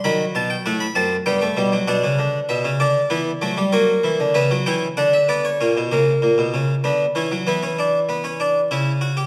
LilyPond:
<<
  \new Staff \with { instrumentName = "Harpsichord" } { \time 3/4 \key b \phrygian \tempo 4 = 97 b''8 a''16 g''16 fis''16 b''16 a''8 g''4 | fis''4 e''8 d''4. | cis''4 e''8 g''8 fis''16 e''16 d''16 cis''16 | r2. |
r2. | }
  \new Staff \with { instrumentName = "Harpsichord" } { \clef bass \time 3/4 \key b \phrygian << { fis4 a8 c'8 b16 a16 g16 fis16 | d'2 b8 a8 | ais4 b8 cis'8 d'8 b8 | cis'8 ais4. b8 cis'8 |
b16 cis'16 d'8 b16 cis'16 d'8 e'8 fis'16 g'16 | } \\ { dis8 b,8 a,8 fis,8 g,8 b,8 | b,16 cis16 d8 b,16 cis16 d8 e8 fis16 g16 | fis8 e16 d16 cis16 fis16 e8 d4 | ais,16 b,16 cis8 ais,16 b,16 cis8 d8 e16 fis16 |
e2 cis4 | } >> }
>>